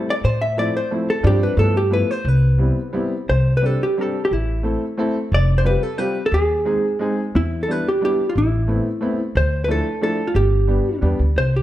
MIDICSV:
0, 0, Header, 1, 4, 480
1, 0, Start_track
1, 0, Key_signature, 0, "major"
1, 0, Tempo, 333704
1, 352, Time_signature, 3, 2, 24, 8
1, 2750, Tempo, 343840
1, 5630, Tempo, 337458
1, 11390, Tempo, 333704
1, 16569, End_track
2, 0, Start_track
2, 0, Title_t, "Hollow-body jazz guitar"
2, 0, Program_c, 0, 26
2, 149, Note_on_c, 0, 74, 98
2, 221, Note_off_c, 0, 74, 0
2, 356, Note_on_c, 0, 72, 94
2, 597, Note_on_c, 0, 76, 85
2, 600, Note_off_c, 0, 72, 0
2, 843, Note_off_c, 0, 76, 0
2, 849, Note_on_c, 0, 74, 87
2, 1095, Note_off_c, 0, 74, 0
2, 1102, Note_on_c, 0, 72, 79
2, 1311, Note_off_c, 0, 72, 0
2, 1582, Note_on_c, 0, 69, 80
2, 1811, Note_off_c, 0, 69, 0
2, 1824, Note_on_c, 0, 67, 96
2, 2057, Note_off_c, 0, 67, 0
2, 2059, Note_on_c, 0, 71, 71
2, 2282, Note_off_c, 0, 71, 0
2, 2288, Note_on_c, 0, 69, 92
2, 2529, Note_off_c, 0, 69, 0
2, 2548, Note_on_c, 0, 67, 78
2, 2752, Note_off_c, 0, 67, 0
2, 2781, Note_on_c, 0, 71, 97
2, 3024, Note_off_c, 0, 71, 0
2, 3024, Note_on_c, 0, 72, 92
2, 3268, Note_off_c, 0, 72, 0
2, 3268, Note_on_c, 0, 71, 84
2, 4206, Note_off_c, 0, 71, 0
2, 4680, Note_on_c, 0, 72, 81
2, 5015, Note_off_c, 0, 72, 0
2, 5065, Note_on_c, 0, 71, 77
2, 5187, Note_off_c, 0, 71, 0
2, 5187, Note_on_c, 0, 69, 70
2, 5422, Note_off_c, 0, 69, 0
2, 5429, Note_on_c, 0, 67, 71
2, 5630, Note_off_c, 0, 67, 0
2, 5682, Note_on_c, 0, 69, 88
2, 6013, Note_off_c, 0, 69, 0
2, 6019, Note_on_c, 0, 67, 67
2, 6131, Note_off_c, 0, 67, 0
2, 6131, Note_on_c, 0, 64, 89
2, 7318, Note_off_c, 0, 64, 0
2, 7578, Note_on_c, 0, 74, 102
2, 7913, Note_on_c, 0, 72, 91
2, 7926, Note_off_c, 0, 74, 0
2, 8024, Note_off_c, 0, 72, 0
2, 8032, Note_on_c, 0, 71, 90
2, 8268, Note_off_c, 0, 71, 0
2, 8268, Note_on_c, 0, 69, 83
2, 8484, Note_off_c, 0, 69, 0
2, 8484, Note_on_c, 0, 71, 94
2, 8859, Note_off_c, 0, 71, 0
2, 8881, Note_on_c, 0, 69, 77
2, 8987, Note_off_c, 0, 69, 0
2, 8995, Note_on_c, 0, 68, 102
2, 10141, Note_off_c, 0, 68, 0
2, 10448, Note_on_c, 0, 64, 81
2, 10814, Note_off_c, 0, 64, 0
2, 10827, Note_on_c, 0, 69, 72
2, 10944, Note_off_c, 0, 69, 0
2, 10944, Note_on_c, 0, 71, 90
2, 11179, Note_off_c, 0, 71, 0
2, 11192, Note_on_c, 0, 67, 68
2, 11408, Note_off_c, 0, 67, 0
2, 11425, Note_on_c, 0, 67, 88
2, 11773, Note_off_c, 0, 67, 0
2, 11779, Note_on_c, 0, 65, 59
2, 11826, Note_off_c, 0, 65, 0
2, 11901, Note_on_c, 0, 64, 69
2, 13024, Note_off_c, 0, 64, 0
2, 13326, Note_on_c, 0, 72, 80
2, 13681, Note_off_c, 0, 72, 0
2, 13719, Note_on_c, 0, 71, 75
2, 13808, Note_off_c, 0, 71, 0
2, 13820, Note_on_c, 0, 69, 90
2, 14263, Note_off_c, 0, 69, 0
2, 14280, Note_on_c, 0, 69, 86
2, 14626, Note_on_c, 0, 65, 55
2, 14636, Note_off_c, 0, 69, 0
2, 14738, Note_off_c, 0, 65, 0
2, 14750, Note_on_c, 0, 67, 86
2, 15645, Note_off_c, 0, 67, 0
2, 16214, Note_on_c, 0, 72, 89
2, 16455, Note_off_c, 0, 72, 0
2, 16482, Note_on_c, 0, 67, 61
2, 16569, Note_off_c, 0, 67, 0
2, 16569, End_track
3, 0, Start_track
3, 0, Title_t, "Upright piano"
3, 0, Program_c, 1, 0
3, 819, Note_on_c, 1, 53, 52
3, 829, Note_on_c, 1, 57, 48
3, 834, Note_on_c, 1, 60, 44
3, 834, Note_on_c, 1, 64, 62
3, 1073, Note_off_c, 1, 53, 0
3, 1078, Note_off_c, 1, 57, 0
3, 1081, Note_off_c, 1, 60, 0
3, 1081, Note_off_c, 1, 64, 0
3, 1303, Note_on_c, 1, 53, 54
3, 1310, Note_on_c, 1, 57, 46
3, 1315, Note_on_c, 1, 60, 50
3, 1323, Note_on_c, 1, 64, 62
3, 1552, Note_off_c, 1, 53, 0
3, 1556, Note_off_c, 1, 57, 0
3, 1558, Note_off_c, 1, 60, 0
3, 1562, Note_off_c, 1, 64, 0
3, 1764, Note_on_c, 1, 53, 73
3, 1775, Note_on_c, 1, 55, 69
3, 1780, Note_on_c, 1, 60, 64
3, 1785, Note_on_c, 1, 62, 91
3, 2161, Note_off_c, 1, 53, 0
3, 2166, Note_off_c, 1, 55, 0
3, 2169, Note_off_c, 1, 60, 0
3, 2172, Note_off_c, 1, 62, 0
3, 2239, Note_on_c, 1, 53, 48
3, 2255, Note_on_c, 1, 57, 51
3, 2262, Note_on_c, 1, 59, 54
3, 2268, Note_on_c, 1, 64, 54
3, 2498, Note_off_c, 1, 53, 0
3, 2506, Note_off_c, 1, 57, 0
3, 2509, Note_off_c, 1, 59, 0
3, 2512, Note_off_c, 1, 64, 0
3, 2727, Note_on_c, 1, 53, 57
3, 2743, Note_on_c, 1, 57, 54
3, 2746, Note_on_c, 1, 59, 51
3, 2755, Note_on_c, 1, 64, 62
3, 2979, Note_off_c, 1, 53, 0
3, 2987, Note_off_c, 1, 57, 0
3, 2988, Note_off_c, 1, 59, 0
3, 2993, Note_off_c, 1, 64, 0
3, 3686, Note_on_c, 1, 55, 54
3, 3692, Note_on_c, 1, 59, 45
3, 3696, Note_on_c, 1, 60, 49
3, 3701, Note_on_c, 1, 64, 47
3, 3937, Note_off_c, 1, 55, 0
3, 3940, Note_off_c, 1, 59, 0
3, 3942, Note_off_c, 1, 60, 0
3, 3944, Note_off_c, 1, 64, 0
3, 4167, Note_on_c, 1, 55, 64
3, 4171, Note_on_c, 1, 59, 56
3, 4175, Note_on_c, 1, 60, 59
3, 4187, Note_on_c, 1, 64, 67
3, 4426, Note_off_c, 1, 55, 0
3, 4428, Note_off_c, 1, 59, 0
3, 4430, Note_off_c, 1, 60, 0
3, 4436, Note_off_c, 1, 64, 0
3, 5127, Note_on_c, 1, 55, 47
3, 5135, Note_on_c, 1, 60, 47
3, 5145, Note_on_c, 1, 62, 42
3, 5149, Note_on_c, 1, 67, 55
3, 5385, Note_off_c, 1, 55, 0
3, 5389, Note_off_c, 1, 60, 0
3, 5394, Note_off_c, 1, 62, 0
3, 5396, Note_off_c, 1, 67, 0
3, 5625, Note_on_c, 1, 55, 52
3, 5629, Note_on_c, 1, 60, 54
3, 5632, Note_on_c, 1, 62, 47
3, 5645, Note_on_c, 1, 67, 58
3, 5871, Note_off_c, 1, 55, 0
3, 5873, Note_off_c, 1, 60, 0
3, 5874, Note_off_c, 1, 62, 0
3, 5881, Note_off_c, 1, 67, 0
3, 6564, Note_on_c, 1, 57, 51
3, 6570, Note_on_c, 1, 60, 49
3, 6581, Note_on_c, 1, 64, 42
3, 6582, Note_on_c, 1, 69, 53
3, 6818, Note_off_c, 1, 57, 0
3, 6821, Note_off_c, 1, 60, 0
3, 6827, Note_off_c, 1, 64, 0
3, 6827, Note_off_c, 1, 69, 0
3, 7052, Note_on_c, 1, 57, 61
3, 7061, Note_on_c, 1, 60, 71
3, 7070, Note_on_c, 1, 64, 71
3, 7075, Note_on_c, 1, 69, 74
3, 7300, Note_off_c, 1, 57, 0
3, 7305, Note_off_c, 1, 60, 0
3, 7310, Note_off_c, 1, 64, 0
3, 7312, Note_off_c, 1, 69, 0
3, 7998, Note_on_c, 1, 55, 50
3, 8001, Note_on_c, 1, 60, 44
3, 8011, Note_on_c, 1, 65, 45
3, 8017, Note_on_c, 1, 67, 63
3, 8247, Note_off_c, 1, 55, 0
3, 8248, Note_off_c, 1, 60, 0
3, 8254, Note_off_c, 1, 65, 0
3, 8256, Note_off_c, 1, 67, 0
3, 8477, Note_on_c, 1, 55, 68
3, 8484, Note_on_c, 1, 60, 59
3, 8491, Note_on_c, 1, 65, 49
3, 8501, Note_on_c, 1, 67, 73
3, 8727, Note_off_c, 1, 55, 0
3, 8730, Note_off_c, 1, 60, 0
3, 8734, Note_off_c, 1, 65, 0
3, 8739, Note_off_c, 1, 67, 0
3, 9438, Note_on_c, 1, 56, 56
3, 9442, Note_on_c, 1, 60, 49
3, 9449, Note_on_c, 1, 63, 44
3, 9452, Note_on_c, 1, 68, 60
3, 9690, Note_off_c, 1, 56, 0
3, 9692, Note_off_c, 1, 60, 0
3, 9696, Note_off_c, 1, 63, 0
3, 9697, Note_off_c, 1, 68, 0
3, 9922, Note_on_c, 1, 56, 63
3, 9937, Note_on_c, 1, 60, 64
3, 9941, Note_on_c, 1, 63, 51
3, 9946, Note_on_c, 1, 68, 68
3, 10178, Note_off_c, 1, 56, 0
3, 10185, Note_off_c, 1, 60, 0
3, 10187, Note_off_c, 1, 63, 0
3, 10190, Note_off_c, 1, 68, 0
3, 10890, Note_on_c, 1, 55, 48
3, 10900, Note_on_c, 1, 59, 38
3, 10903, Note_on_c, 1, 62, 42
3, 10910, Note_on_c, 1, 64, 49
3, 11146, Note_off_c, 1, 55, 0
3, 11151, Note_off_c, 1, 59, 0
3, 11152, Note_off_c, 1, 62, 0
3, 11156, Note_off_c, 1, 64, 0
3, 11370, Note_on_c, 1, 55, 61
3, 11373, Note_on_c, 1, 59, 52
3, 11383, Note_on_c, 1, 62, 56
3, 11388, Note_on_c, 1, 64, 58
3, 11624, Note_off_c, 1, 55, 0
3, 11626, Note_off_c, 1, 59, 0
3, 11631, Note_off_c, 1, 62, 0
3, 11633, Note_off_c, 1, 64, 0
3, 12329, Note_on_c, 1, 57, 54
3, 12338, Note_on_c, 1, 59, 42
3, 12344, Note_on_c, 1, 60, 44
3, 12349, Note_on_c, 1, 64, 55
3, 12582, Note_off_c, 1, 57, 0
3, 12586, Note_off_c, 1, 59, 0
3, 12589, Note_off_c, 1, 60, 0
3, 12592, Note_off_c, 1, 64, 0
3, 12803, Note_on_c, 1, 57, 62
3, 12814, Note_on_c, 1, 59, 56
3, 12818, Note_on_c, 1, 60, 62
3, 12828, Note_on_c, 1, 64, 71
3, 13055, Note_off_c, 1, 57, 0
3, 13061, Note_off_c, 1, 59, 0
3, 13063, Note_off_c, 1, 60, 0
3, 13068, Note_off_c, 1, 64, 0
3, 13760, Note_on_c, 1, 53, 49
3, 13773, Note_on_c, 1, 57, 54
3, 13781, Note_on_c, 1, 62, 46
3, 13784, Note_on_c, 1, 64, 60
3, 14010, Note_off_c, 1, 53, 0
3, 14016, Note_off_c, 1, 57, 0
3, 14020, Note_off_c, 1, 62, 0
3, 14022, Note_off_c, 1, 64, 0
3, 14246, Note_on_c, 1, 53, 54
3, 14253, Note_on_c, 1, 57, 53
3, 14259, Note_on_c, 1, 62, 54
3, 14268, Note_on_c, 1, 64, 66
3, 14491, Note_off_c, 1, 53, 0
3, 14495, Note_off_c, 1, 57, 0
3, 14498, Note_off_c, 1, 62, 0
3, 14502, Note_off_c, 1, 64, 0
3, 15198, Note_on_c, 1, 55, 46
3, 15207, Note_on_c, 1, 59, 53
3, 15210, Note_on_c, 1, 62, 40
3, 15216, Note_on_c, 1, 67, 59
3, 15448, Note_off_c, 1, 55, 0
3, 15452, Note_off_c, 1, 59, 0
3, 15454, Note_off_c, 1, 62, 0
3, 15457, Note_off_c, 1, 67, 0
3, 15687, Note_on_c, 1, 55, 58
3, 15695, Note_on_c, 1, 59, 62
3, 15697, Note_on_c, 1, 62, 51
3, 15704, Note_on_c, 1, 67, 63
3, 15939, Note_off_c, 1, 55, 0
3, 15943, Note_off_c, 1, 59, 0
3, 15944, Note_off_c, 1, 62, 0
3, 15947, Note_off_c, 1, 67, 0
3, 16569, End_track
4, 0, Start_track
4, 0, Title_t, "Upright bass"
4, 0, Program_c, 2, 32
4, 345, Note_on_c, 2, 45, 78
4, 974, Note_off_c, 2, 45, 0
4, 1782, Note_on_c, 2, 43, 94
4, 2095, Note_off_c, 2, 43, 0
4, 2258, Note_on_c, 2, 43, 94
4, 2887, Note_off_c, 2, 43, 0
4, 3216, Note_on_c, 2, 36, 84
4, 3843, Note_off_c, 2, 36, 0
4, 4673, Note_on_c, 2, 36, 66
4, 5295, Note_off_c, 2, 36, 0
4, 6111, Note_on_c, 2, 33, 65
4, 6731, Note_off_c, 2, 33, 0
4, 7539, Note_on_c, 2, 29, 77
4, 8156, Note_off_c, 2, 29, 0
4, 8960, Note_on_c, 2, 39, 78
4, 9591, Note_off_c, 2, 39, 0
4, 10429, Note_on_c, 2, 40, 66
4, 11055, Note_off_c, 2, 40, 0
4, 11866, Note_on_c, 2, 33, 65
4, 12488, Note_off_c, 2, 33, 0
4, 13302, Note_on_c, 2, 38, 85
4, 13920, Note_off_c, 2, 38, 0
4, 14732, Note_on_c, 2, 31, 76
4, 15357, Note_off_c, 2, 31, 0
4, 15702, Note_on_c, 2, 40, 65
4, 15922, Note_off_c, 2, 40, 0
4, 15947, Note_on_c, 2, 38, 66
4, 16162, Note_off_c, 2, 38, 0
4, 16189, Note_on_c, 2, 36, 67
4, 16569, Note_off_c, 2, 36, 0
4, 16569, End_track
0, 0, End_of_file